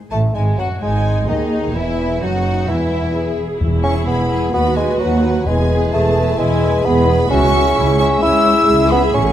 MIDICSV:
0, 0, Header, 1, 10, 480
1, 0, Start_track
1, 0, Tempo, 464756
1, 1810, Time_signature, 4, 2, 24, 8
1, 5639, Tempo, 459770
1, 9675, End_track
2, 0, Start_track
2, 0, Title_t, "Flute"
2, 0, Program_c, 0, 73
2, 109, Note_on_c, 0, 81, 54
2, 171, Note_off_c, 0, 81, 0
2, 354, Note_on_c, 0, 80, 46
2, 612, Note_on_c, 0, 78, 53
2, 627, Note_off_c, 0, 80, 0
2, 847, Note_on_c, 0, 80, 63
2, 862, Note_off_c, 0, 78, 0
2, 1329, Note_on_c, 0, 75, 52
2, 1345, Note_off_c, 0, 80, 0
2, 1801, Note_off_c, 0, 75, 0
2, 1807, Note_on_c, 0, 76, 50
2, 2289, Note_on_c, 0, 78, 60
2, 2305, Note_off_c, 0, 76, 0
2, 2768, Note_on_c, 0, 76, 52
2, 2783, Note_off_c, 0, 78, 0
2, 3480, Note_off_c, 0, 76, 0
2, 3956, Note_on_c, 0, 85, 67
2, 4018, Note_off_c, 0, 85, 0
2, 4205, Note_on_c, 0, 83, 59
2, 4674, Note_off_c, 0, 83, 0
2, 4686, Note_on_c, 0, 83, 73
2, 4748, Note_off_c, 0, 83, 0
2, 4924, Note_on_c, 0, 80, 58
2, 5146, Note_off_c, 0, 80, 0
2, 5152, Note_on_c, 0, 78, 65
2, 5627, Note_off_c, 0, 78, 0
2, 5645, Note_on_c, 0, 80, 67
2, 6097, Note_off_c, 0, 80, 0
2, 6103, Note_on_c, 0, 81, 77
2, 6589, Note_on_c, 0, 80, 82
2, 6605, Note_off_c, 0, 81, 0
2, 7091, Note_on_c, 0, 83, 78
2, 7106, Note_off_c, 0, 80, 0
2, 7567, Note_off_c, 0, 83, 0
2, 7576, Note_on_c, 0, 85, 96
2, 8270, Note_off_c, 0, 85, 0
2, 8283, Note_on_c, 0, 85, 86
2, 8514, Note_off_c, 0, 85, 0
2, 8523, Note_on_c, 0, 88, 96
2, 9234, Note_on_c, 0, 83, 77
2, 9250, Note_off_c, 0, 88, 0
2, 9477, Note_on_c, 0, 85, 76
2, 9493, Note_off_c, 0, 83, 0
2, 9675, Note_off_c, 0, 85, 0
2, 9675, End_track
3, 0, Start_track
3, 0, Title_t, "Violin section"
3, 0, Program_c, 1, 48
3, 116, Note_on_c, 1, 81, 55
3, 199, Note_off_c, 1, 81, 0
3, 361, Note_on_c, 1, 80, 47
3, 444, Note_off_c, 1, 80, 0
3, 603, Note_on_c, 1, 78, 49
3, 686, Note_off_c, 1, 78, 0
3, 852, Note_on_c, 1, 80, 52
3, 1320, Note_off_c, 1, 80, 0
3, 1328, Note_on_c, 1, 75, 48
3, 1801, Note_off_c, 1, 75, 0
3, 1806, Note_on_c, 1, 76, 57
3, 2290, Note_off_c, 1, 76, 0
3, 2300, Note_on_c, 1, 78, 60
3, 2765, Note_off_c, 1, 78, 0
3, 2766, Note_on_c, 1, 76, 54
3, 3479, Note_off_c, 1, 76, 0
3, 3955, Note_on_c, 1, 85, 68
3, 4181, Note_off_c, 1, 85, 0
3, 4203, Note_on_c, 1, 83, 59
3, 4667, Note_off_c, 1, 83, 0
3, 4680, Note_on_c, 1, 83, 71
3, 4914, Note_off_c, 1, 83, 0
3, 4915, Note_on_c, 1, 80, 64
3, 5155, Note_on_c, 1, 78, 58
3, 5157, Note_off_c, 1, 80, 0
3, 5628, Note_off_c, 1, 78, 0
3, 5632, Note_on_c, 1, 80, 69
3, 6107, Note_off_c, 1, 80, 0
3, 6116, Note_on_c, 1, 81, 69
3, 6589, Note_off_c, 1, 81, 0
3, 6602, Note_on_c, 1, 80, 73
3, 7082, Note_on_c, 1, 83, 78
3, 7084, Note_off_c, 1, 80, 0
3, 7558, Note_on_c, 1, 85, 98
3, 7562, Note_off_c, 1, 83, 0
3, 8260, Note_off_c, 1, 85, 0
3, 8273, Note_on_c, 1, 85, 78
3, 8356, Note_off_c, 1, 85, 0
3, 8511, Note_on_c, 1, 88, 86
3, 9219, Note_off_c, 1, 88, 0
3, 9227, Note_on_c, 1, 83, 81
3, 9473, Note_off_c, 1, 83, 0
3, 9478, Note_on_c, 1, 85, 75
3, 9675, Note_off_c, 1, 85, 0
3, 9675, End_track
4, 0, Start_track
4, 0, Title_t, "Violin section"
4, 0, Program_c, 2, 48
4, 120, Note_on_c, 2, 57, 44
4, 202, Note_off_c, 2, 57, 0
4, 364, Note_on_c, 2, 56, 51
4, 601, Note_off_c, 2, 56, 0
4, 608, Note_on_c, 2, 66, 52
4, 839, Note_on_c, 2, 56, 50
4, 848, Note_off_c, 2, 66, 0
4, 1314, Note_off_c, 2, 56, 0
4, 1320, Note_on_c, 2, 63, 50
4, 1797, Note_off_c, 2, 63, 0
4, 1797, Note_on_c, 2, 64, 56
4, 2285, Note_off_c, 2, 64, 0
4, 2290, Note_on_c, 2, 66, 54
4, 2769, Note_off_c, 2, 66, 0
4, 2775, Note_on_c, 2, 64, 59
4, 3484, Note_off_c, 2, 64, 0
4, 3962, Note_on_c, 2, 68, 41
4, 4433, Note_off_c, 2, 68, 0
4, 4448, Note_on_c, 2, 68, 51
4, 4679, Note_on_c, 2, 71, 45
4, 4680, Note_off_c, 2, 68, 0
4, 4914, Note_off_c, 2, 71, 0
4, 4924, Note_on_c, 2, 71, 51
4, 5381, Note_off_c, 2, 71, 0
4, 5393, Note_on_c, 2, 71, 51
4, 5632, Note_off_c, 2, 71, 0
4, 5884, Note_on_c, 2, 71, 53
4, 6352, Note_off_c, 2, 71, 0
4, 6370, Note_on_c, 2, 71, 53
4, 6838, Note_off_c, 2, 71, 0
4, 6852, Note_on_c, 2, 71, 50
4, 7319, Note_off_c, 2, 71, 0
4, 7336, Note_on_c, 2, 71, 57
4, 7564, Note_off_c, 2, 71, 0
4, 7577, Note_on_c, 2, 76, 60
4, 7787, Note_off_c, 2, 76, 0
4, 7800, Note_on_c, 2, 76, 52
4, 8268, Note_off_c, 2, 76, 0
4, 8282, Note_on_c, 2, 76, 59
4, 8741, Note_off_c, 2, 76, 0
4, 8753, Note_on_c, 2, 76, 57
4, 9225, Note_off_c, 2, 76, 0
4, 9243, Note_on_c, 2, 76, 56
4, 9476, Note_off_c, 2, 76, 0
4, 9675, End_track
5, 0, Start_track
5, 0, Title_t, "French horn section"
5, 0, Program_c, 3, 60
5, 123, Note_on_c, 3, 57, 62
5, 348, Note_off_c, 3, 57, 0
5, 365, Note_on_c, 3, 56, 45
5, 474, Note_off_c, 3, 56, 0
5, 586, Note_on_c, 3, 54, 52
5, 699, Note_off_c, 3, 54, 0
5, 831, Note_on_c, 3, 56, 57
5, 1310, Note_off_c, 3, 56, 0
5, 1313, Note_on_c, 3, 51, 54
5, 1786, Note_on_c, 3, 52, 57
5, 1803, Note_off_c, 3, 51, 0
5, 2280, Note_off_c, 3, 52, 0
5, 2281, Note_on_c, 3, 54, 54
5, 2755, Note_off_c, 3, 54, 0
5, 2773, Note_on_c, 3, 52, 57
5, 3469, Note_off_c, 3, 52, 0
5, 3720, Note_on_c, 3, 64, 51
5, 3728, Note_on_c, 3, 68, 50
5, 4166, Note_off_c, 3, 64, 0
5, 4171, Note_off_c, 3, 68, 0
5, 4198, Note_on_c, 3, 68, 51
5, 4202, Note_on_c, 3, 64, 56
5, 4670, Note_off_c, 3, 68, 0
5, 4672, Note_off_c, 3, 64, 0
5, 4672, Note_on_c, 3, 66, 57
5, 4684, Note_on_c, 3, 71, 56
5, 5150, Note_off_c, 3, 66, 0
5, 5151, Note_off_c, 3, 71, 0
5, 5162, Note_on_c, 3, 66, 61
5, 5164, Note_on_c, 3, 71, 55
5, 5632, Note_off_c, 3, 66, 0
5, 5633, Note_off_c, 3, 71, 0
5, 5647, Note_on_c, 3, 64, 61
5, 5648, Note_on_c, 3, 71, 67
5, 6576, Note_off_c, 3, 71, 0
5, 6581, Note_off_c, 3, 64, 0
5, 6589, Note_on_c, 3, 71, 72
5, 6594, Note_on_c, 3, 64, 67
5, 7068, Note_off_c, 3, 71, 0
5, 7070, Note_off_c, 3, 64, 0
5, 7091, Note_on_c, 3, 64, 68
5, 7099, Note_on_c, 3, 71, 71
5, 7545, Note_off_c, 3, 64, 0
5, 7553, Note_on_c, 3, 68, 73
5, 7558, Note_on_c, 3, 64, 71
5, 7561, Note_off_c, 3, 71, 0
5, 9430, Note_off_c, 3, 68, 0
5, 9481, Note_on_c, 3, 66, 67
5, 9675, Note_off_c, 3, 64, 0
5, 9675, Note_off_c, 3, 66, 0
5, 9675, End_track
6, 0, Start_track
6, 0, Title_t, "Viola section"
6, 0, Program_c, 4, 48
6, 851, Note_on_c, 4, 63, 54
6, 1296, Note_off_c, 4, 63, 0
6, 1331, Note_on_c, 4, 68, 52
6, 1812, Note_off_c, 4, 68, 0
6, 1812, Note_on_c, 4, 64, 49
6, 2283, Note_off_c, 4, 64, 0
6, 2300, Note_on_c, 4, 63, 46
6, 2765, Note_off_c, 4, 63, 0
6, 2775, Note_on_c, 4, 64, 55
6, 3247, Note_off_c, 4, 64, 0
6, 3250, Note_on_c, 4, 68, 56
6, 3712, Note_off_c, 4, 68, 0
6, 3719, Note_on_c, 4, 64, 64
6, 4678, Note_on_c, 4, 66, 75
6, 4681, Note_off_c, 4, 64, 0
6, 5620, Note_off_c, 4, 66, 0
6, 5639, Note_on_c, 4, 68, 77
6, 6582, Note_off_c, 4, 68, 0
6, 6602, Note_on_c, 4, 64, 80
6, 7074, Note_off_c, 4, 64, 0
6, 7090, Note_on_c, 4, 68, 83
6, 7557, Note_off_c, 4, 68, 0
6, 7563, Note_on_c, 4, 66, 79
6, 8030, Note_off_c, 4, 66, 0
6, 8042, Note_on_c, 4, 64, 74
6, 8508, Note_on_c, 4, 61, 72
6, 8518, Note_off_c, 4, 64, 0
6, 8981, Note_off_c, 4, 61, 0
6, 8992, Note_on_c, 4, 68, 79
6, 9675, Note_off_c, 4, 68, 0
6, 9675, End_track
7, 0, Start_track
7, 0, Title_t, "Bassoon"
7, 0, Program_c, 5, 70
7, 123, Note_on_c, 5, 57, 62
7, 355, Note_on_c, 5, 56, 54
7, 371, Note_off_c, 5, 57, 0
7, 595, Note_off_c, 5, 56, 0
7, 601, Note_on_c, 5, 54, 53
7, 711, Note_off_c, 5, 54, 0
7, 849, Note_on_c, 5, 56, 68
7, 1319, Note_off_c, 5, 56, 0
7, 1332, Note_on_c, 5, 51, 61
7, 1803, Note_off_c, 5, 51, 0
7, 1820, Note_on_c, 5, 52, 59
7, 2299, Note_on_c, 5, 54, 68
7, 2314, Note_off_c, 5, 52, 0
7, 2760, Note_off_c, 5, 54, 0
7, 2766, Note_on_c, 5, 52, 59
7, 3465, Note_off_c, 5, 52, 0
7, 3959, Note_on_c, 5, 61, 76
7, 4067, Note_off_c, 5, 61, 0
7, 4199, Note_on_c, 5, 59, 65
7, 4671, Note_off_c, 5, 59, 0
7, 4684, Note_on_c, 5, 59, 88
7, 4912, Note_off_c, 5, 59, 0
7, 4918, Note_on_c, 5, 56, 77
7, 5153, Note_off_c, 5, 56, 0
7, 5160, Note_on_c, 5, 54, 75
7, 5647, Note_on_c, 5, 56, 71
7, 5662, Note_off_c, 5, 54, 0
7, 6124, Note_off_c, 5, 56, 0
7, 6128, Note_on_c, 5, 57, 86
7, 6596, Note_off_c, 5, 57, 0
7, 6607, Note_on_c, 5, 56, 80
7, 7087, Note_on_c, 5, 59, 93
7, 7103, Note_off_c, 5, 56, 0
7, 7558, Note_off_c, 5, 59, 0
7, 7564, Note_on_c, 5, 61, 93
7, 8264, Note_off_c, 5, 61, 0
7, 8290, Note_on_c, 5, 61, 91
7, 8518, Note_off_c, 5, 61, 0
7, 8522, Note_on_c, 5, 64, 105
7, 9224, Note_off_c, 5, 64, 0
7, 9249, Note_on_c, 5, 59, 95
7, 9355, Note_off_c, 5, 59, 0
7, 9482, Note_on_c, 5, 61, 82
7, 9675, Note_off_c, 5, 61, 0
7, 9675, End_track
8, 0, Start_track
8, 0, Title_t, "Cello section"
8, 0, Program_c, 6, 48
8, 119, Note_on_c, 6, 45, 50
8, 346, Note_off_c, 6, 45, 0
8, 367, Note_on_c, 6, 44, 44
8, 603, Note_off_c, 6, 44, 0
8, 604, Note_on_c, 6, 42, 48
8, 686, Note_off_c, 6, 42, 0
8, 839, Note_on_c, 6, 44, 50
8, 1314, Note_off_c, 6, 44, 0
8, 1327, Note_on_c, 6, 39, 56
8, 1805, Note_on_c, 6, 40, 52
8, 1810, Note_off_c, 6, 39, 0
8, 2289, Note_off_c, 6, 40, 0
8, 2291, Note_on_c, 6, 42, 52
8, 2770, Note_off_c, 6, 42, 0
8, 2774, Note_on_c, 6, 40, 53
8, 3483, Note_off_c, 6, 40, 0
8, 3726, Note_on_c, 6, 40, 46
8, 4146, Note_off_c, 6, 40, 0
8, 4200, Note_on_c, 6, 40, 53
8, 4624, Note_off_c, 6, 40, 0
8, 4680, Note_on_c, 6, 39, 61
8, 5102, Note_off_c, 6, 39, 0
8, 5166, Note_on_c, 6, 39, 66
8, 5587, Note_off_c, 6, 39, 0
8, 5639, Note_on_c, 6, 40, 52
8, 6063, Note_off_c, 6, 40, 0
8, 6114, Note_on_c, 6, 40, 55
8, 6541, Note_off_c, 6, 40, 0
8, 6601, Note_on_c, 6, 40, 65
8, 7027, Note_off_c, 6, 40, 0
8, 7080, Note_on_c, 6, 40, 73
8, 7505, Note_off_c, 6, 40, 0
8, 7555, Note_on_c, 6, 37, 69
8, 7979, Note_off_c, 6, 37, 0
8, 8046, Note_on_c, 6, 37, 58
8, 8463, Note_off_c, 6, 37, 0
8, 8520, Note_on_c, 6, 37, 68
8, 8940, Note_off_c, 6, 37, 0
8, 8992, Note_on_c, 6, 37, 73
8, 9419, Note_off_c, 6, 37, 0
8, 9474, Note_on_c, 6, 45, 68
8, 9675, Note_off_c, 6, 45, 0
8, 9675, End_track
9, 0, Start_track
9, 0, Title_t, "Timpani"
9, 0, Program_c, 7, 47
9, 3723, Note_on_c, 7, 40, 59
9, 4401, Note_off_c, 7, 40, 0
9, 5632, Note_on_c, 7, 40, 59
9, 6314, Note_off_c, 7, 40, 0
9, 9675, End_track
10, 0, Start_track
10, 0, Title_t, "Double bass section"
10, 0, Program_c, 8, 48
10, 129, Note_on_c, 8, 33, 53
10, 352, Note_off_c, 8, 33, 0
10, 372, Note_on_c, 8, 32, 49
10, 606, Note_off_c, 8, 32, 0
10, 608, Note_on_c, 8, 30, 50
10, 690, Note_off_c, 8, 30, 0
10, 854, Note_on_c, 8, 32, 55
10, 1321, Note_off_c, 8, 32, 0
10, 1332, Note_on_c, 8, 39, 50
10, 1813, Note_off_c, 8, 39, 0
10, 1813, Note_on_c, 8, 28, 52
10, 2294, Note_off_c, 8, 28, 0
10, 2297, Note_on_c, 8, 30, 59
10, 2773, Note_off_c, 8, 30, 0
10, 2778, Note_on_c, 8, 28, 55
10, 3485, Note_off_c, 8, 28, 0
10, 3725, Note_on_c, 8, 28, 60
10, 4145, Note_off_c, 8, 28, 0
10, 4208, Note_on_c, 8, 28, 61
10, 4628, Note_off_c, 8, 28, 0
10, 4685, Note_on_c, 8, 39, 57
10, 5105, Note_off_c, 8, 39, 0
10, 5169, Note_on_c, 8, 39, 55
10, 5589, Note_off_c, 8, 39, 0
10, 5653, Note_on_c, 8, 28, 64
10, 6070, Note_off_c, 8, 28, 0
10, 6128, Note_on_c, 8, 28, 68
10, 6548, Note_off_c, 8, 28, 0
10, 6610, Note_on_c, 8, 28, 67
10, 7031, Note_off_c, 8, 28, 0
10, 7088, Note_on_c, 8, 28, 68
10, 7509, Note_off_c, 8, 28, 0
10, 7567, Note_on_c, 8, 37, 73
10, 7985, Note_off_c, 8, 37, 0
10, 8042, Note_on_c, 8, 37, 82
10, 8461, Note_off_c, 8, 37, 0
10, 8518, Note_on_c, 8, 37, 69
10, 8939, Note_off_c, 8, 37, 0
10, 8995, Note_on_c, 8, 37, 71
10, 9420, Note_off_c, 8, 37, 0
10, 9489, Note_on_c, 8, 33, 85
10, 9675, Note_off_c, 8, 33, 0
10, 9675, End_track
0, 0, End_of_file